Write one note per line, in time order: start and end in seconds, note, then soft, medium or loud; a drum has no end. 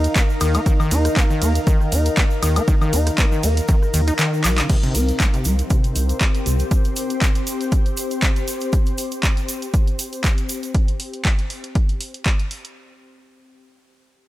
0.00 0.17 D#4 medium
0.00 6.28 D#4 medium
0.00 6.61 A#4 loud
0.00 5.62 F5 medium
0.04 closed hi-hat medium
0.04 shaker soft
0.16 0.23 A#3 medium
0.16 kick loud
0.16 clap loud
0.16 closed hi-hat medium
0.16 shaker medium
0.30 shaker soft
0.41 0.58 D#2 medium
0.41 0.56 D#3 medium
0.41 cross-stick medium
0.41 open hi-hat medium
0.41 ride medium
0.41 high woodblock medium
0.41 shaker medium
0.54 0.61 A#3 loud
0.54 closed hi-hat medium
0.54 high woodblock medium
0.54 shaker soft
0.66 0.74 D#3 medium
0.66 kick loud
0.66 closed hi-hat medium
0.66 shaker soft
0.80 0.93 D#3 loud
0.80 high woodblock medium
0.80 shaker soft
0.91 1.08 D#2 loud
0.91 1.18 D#4 medium
0.91 open hi-hat loud
0.91 ride medium
0.91 shaker medium
1.05 cross-stick medium
1.05 closed hi-hat medium
1.05 shaker soft
1.16 1.24 A#3 medium
1.16 kick loud
1.16 clap loud
1.16 closed hi-hat medium
1.16 shaker medium
1.30 1.43 D#3 medium
1.30 shaker soft
1.42 1.59 D#2 medium
1.42 1.53 A#3 medium
1.42 open hi-hat medium
1.42 ride medium
1.42 shaker medium
1.55 closed hi-hat medium
1.55 shaker soft
1.67 1.94 D#3 medium
1.67 kick loud
1.67 closed hi-hat medium
1.67 shaker medium
1.81 cross-stick soft
1.81 shaker soft
1.92 2.09 D#2 loud
1.92 2.19 D#4 medium
1.92 open hi-hat loud
1.92 ride medium
1.92 shaker medium
2.06 closed hi-hat medium
2.06 shaker soft
2.17 2.25 A#3 medium
2.17 kick loud
2.17 clap loud
2.17 closed hi-hat medium
2.17 shaker soft
2.31 shaker soft
2.43 2.60 D#2 medium
2.43 2.58 D#3 medium
2.43 cross-stick medium
2.43 open hi-hat medium
2.43 ride medium
2.43 high woodblock medium
2.43 shaker medium
2.56 2.63 A#3 loud
2.56 closed hi-hat medium
2.56 high woodblock medium
2.56 shaker soft
2.68 2.75 D#3 medium
2.68 kick loud
2.68 closed hi-hat medium
2.68 shaker medium
2.81 2.94 D#3 loud
2.81 high woodblock medium
2.81 shaker soft
2.93 3.10 D#2 medium
2.93 3.20 D#4 medium
2.93 open hi-hat loud
2.93 ride medium
2.93 shaker medium
3.07 cross-stick medium
3.07 closed hi-hat medium
3.07 shaker soft
3.18 3.26 A#3 medium
3.18 kick loud
3.18 clap loud
3.18 closed hi-hat medium
3.18 shaker medium
3.32 3.45 D#3 medium
3.32 shaker soft
3.43 3.61 D#2 medium
3.43 3.55 A#3 medium
3.43 open hi-hat loud
3.43 ride medium
3.43 shaker medium
3.57 closed hi-hat medium
3.57 shaker soft
3.68 3.76 D#3 medium
3.68 kick loud
3.68 closed hi-hat medium
3.68 shaker medium
3.82 cross-stick soft
3.82 shaker soft
3.94 4.11 D#2 loud
3.94 4.01 D#3 loud
3.94 open hi-hat loud
3.94 ride medium
3.94 shaker medium
4.08 4.14 D#4 medium
4.08 closed hi-hat medium
4.08 shaker soft
4.18 4.46 D#3 loud
4.18 clap loud
4.18 closed hi-hat medium
4.18 shaker soft
4.34 shaker soft
4.44 4.61 A#1 medium
4.44 4.60 F#3 medium
4.44 clap medium
4.44 open hi-hat medium
4.44 ride medium
4.44 high woodblock medium
4.44 shaker medium
4.58 4.68 C#3 medium
4.58 clap loud
4.58 closed hi-hat medium
4.58 high woodblock medium
4.58 shaker soft
4.69 4.77 C3 medium
4.69 10.75 C4 medium
4.69 kick loud
4.69 closed hi-hat medium
4.69 crash medium
4.69 shaker soft
4.83 4.96 C3 loud
4.83 closed hi-hat soft
4.83 shaker soft
4.95 5.12 C2 loud
4.95 5.21 C4 medium
4.95 open hi-hat loud
4.95 shaker loud
5.09 closed hi-hat soft
5.09 shaker soft
5.20 5.28 G3 medium
5.20 10.75 C5 medium
5.20 kick medium
5.20 clap loud
5.20 closed hi-hat medium
5.20 shaker medium
5.32 5.47 C3 medium
5.32 10.75 G4 medium
5.32 closed hi-hat soft
5.32 shaker soft
5.44 5.62 C2 medium
5.44 5.57 G3 medium
5.44 open hi-hat medium
5.44 shaker medium
5.59 closed hi-hat soft
5.59 shaker soft
5.70 5.97 C3 medium
5.70 kick loud
5.70 closed hi-hat medium
5.70 shaker soft
5.84 closed hi-hat soft
5.84 shaker soft
5.96 6.13 C2 loud
5.96 6.22 C4 medium
5.96 open hi-hat loud
5.96 shaker medium
6.09 closed hi-hat soft
6.09 shaker soft
6.21 6.28 G3 medium
6.21 kick loud
6.21 clap loud
6.21 closed hi-hat medium
6.21 shaker soft
6.35 closed hi-hat soft
6.35 shaker soft
6.46 6.63 C2 medium
6.46 6.61 C3 medium
6.46 open hi-hat medium
6.46 shaker medium
6.59 6.66 G3 loud
6.59 closed hi-hat soft
6.59 shaker soft
6.71 kick loud
6.71 closed hi-hat medium
6.71 shaker medium
6.85 closed hi-hat soft
6.85 shaker soft
6.96 open hi-hat loud
6.96 shaker medium
7.10 closed hi-hat soft
7.10 shaker soft
7.22 kick loud
7.22 clap loud
7.22 closed hi-hat medium
7.22 shaker medium
7.35 closed hi-hat soft
7.35 shaker soft
7.47 open hi-hat medium
7.47 shaker medium
7.61 closed hi-hat soft
7.61 shaker soft
7.72 kick loud
7.72 closed hi-hat medium
7.72 shaker soft
7.86 closed hi-hat soft
7.86 shaker soft
7.97 open hi-hat loud
7.97 shaker loud
8.11 closed hi-hat soft
8.11 shaker soft
8.22 kick loud
8.22 clap loud
8.22 closed hi-hat medium
8.22 shaker soft
8.36 closed hi-hat soft
8.36 shaker soft
8.48 open hi-hat medium
8.48 shaker loud
8.60 closed hi-hat soft
8.60 shaker soft
8.73 kick loud
8.73 closed hi-hat medium
8.73 shaker soft
8.86 closed hi-hat soft
8.86 shaker soft
8.98 open hi-hat loud
8.98 shaker medium
9.12 closed hi-hat soft
9.12 shaker soft
9.23 kick medium
9.23 clap loud
9.23 closed hi-hat medium
9.23 shaker medium
9.37 closed hi-hat soft
9.37 shaker soft
9.49 open hi-hat medium
9.49 shaker medium
9.62 closed hi-hat soft
9.62 shaker soft
9.74 kick loud
9.74 closed hi-hat medium
9.74 shaker medium
9.87 closed hi-hat soft
9.87 shaker soft
9.99 open hi-hat loud
9.99 shaker medium
10.13 closed hi-hat soft
10.13 shaker soft
10.24 kick loud
10.24 clap loud
10.24 closed hi-hat medium
10.24 shaker medium
10.38 closed hi-hat soft
10.38 shaker soft
10.49 open hi-hat medium
10.49 shaker loud
10.63 closed hi-hat soft
10.63 shaker soft
10.74 kick loud
10.74 closed hi-hat medium
10.88 closed hi-hat soft
11.00 open hi-hat loud
11.13 closed hi-hat soft
11.25 kick loud
11.25 clap loud
11.25 closed hi-hat medium
11.39 closed hi-hat soft
11.50 open hi-hat medium
11.64 closed hi-hat soft
11.75 kick loud
11.75 closed hi-hat medium
11.89 closed hi-hat soft
12.01 open hi-hat loud
12.14 closed hi-hat soft
12.26 kick loud
12.26 clap loud
12.26 closed hi-hat medium
12.40 closed hi-hat soft
12.51 open hi-hat medium
12.65 closed hi-hat soft